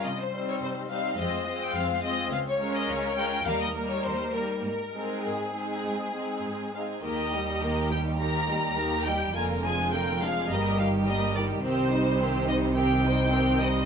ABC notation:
X:1
M:4/4
L:1/16
Q:1/4=105
K:Ab
V:1 name="Violin section"
e c2 d c2 f2 e3 g f2 e2 | f d2 e d2 g2 f e2 d c2 B2 | B4 A8- A2 f2 | [K:Eb] e6 g2 b6 g2 |
a2 a2 g2 f2 e2 f2 e2 d2 | c6 e2 g6 e2 |]
V:2 name="Violin section"
z2 [Ec]4 [Ec]2 [Fc]2 [Fc]4 [Fc]2 | z2 [FB]4 [FB]2 [EB]2 [EB]4 [EB]2 | z2 [EA]4 [EA]4 [EA]4 [EA]2 | [K:Eb] [GB]2 [EG]2 [GB]2 [EG]2 [GB]2 [EG]2 [GB]2 [EG]2 |
[FB]2 [DA]2 [FB]2 [DA]2 [GB]2 [EG]2 [GB]2 [EG]2 | [CG]2 [Ec]2 [CG]2 [Ec]2 [CG]2 [Ec]2 [CG]2 [Ec]2 |]
V:3 name="Viola section" clef=bass
z2 [G,C]4 [G,C]2 [A,C]2 [A,C]4 [A,C]2 | z2 [A,D]4 [A,D]2 [G,B,]2 [G,B,]4 [G,B,]2 | z2 [A,C]4 [A,C]4 [A,C]4 [A,C]2 | [K:Eb] [E,B,]2 G,2 [E,B,]2 G,2 [E,B,]2 G,2 [E,B,]2 G,2 |
[D,B,]2 [F,A,]2 [D,B,]2 [F,A,]2 [G,B,]2 [E,G,]2 [G,B,]2 [E,G,]2 | [E,C]2 [G,E]2 [E,C]2 [G,E]2 [E,C]2 [G,E]2 [E,C]2 [G,E]2 |]
V:4 name="Cello section" clef=bass
C,4 C,4 F,,4 F,,4 | D,,4 D,,4 E,,4 E,,4 | A,,4 A,,4 A,,4 A,,4 | [K:Eb] E,,16 |
F,,8 G,,8 | C,16 |]
V:5 name="Double bass section" clef=bass
z16 | z16 | z16 | [K:Eb] E,,16 |
F,,,8 G,,,8 | C,,16 |]